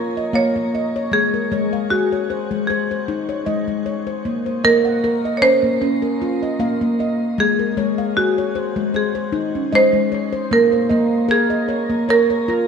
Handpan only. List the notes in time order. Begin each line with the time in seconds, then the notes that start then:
Already playing: F4 C#5
0.17 D#5
0.33 A#3 F5
0.56 A#3
0.75 D#5
0.96 C#5
1.12 G#3
1.34 A#4
1.52 G#3 C#5
1.73 F5
1.91 G#4
2.12 C#5
2.30 C5
2.51 G#3
2.70 C5
2.91 C5
3.08 D#4
3.29 C#5
3.46 G#3 D#5
3.68 G#3
3.86 C#5
4.07 C5
4.25 A#3
4.46 C5
4.64 A#3 D#5
4.85 F#5
5.04 A#4
5.25 D#5
5.42 C#4
5.63 A#3
5.82 C#4
6.02 A#4
6.22 F4
6.43 D#5
6.60 A#3 F5
6.81 A#3
7.00 D#5
7.38 G#3
7.59 A#4
7.77 G#3 C#5
7.98 F5
8.17 G#4
8.38 C#5
8.55 C5
8.76 G#3
8.94 C5
9.15 C5
9.32 D#4
9.55 C#4
9.72 G#3 D#5
9.93 G#3
10.12 C#5
10.33 C5
10.51 A#3
10.72 C5
10.89 A#3 D#5
11.29 A#4
11.50 D#5
11.69 C#5
11.90 A#3
12.09 C#5
12.30 C#5
12.48 F4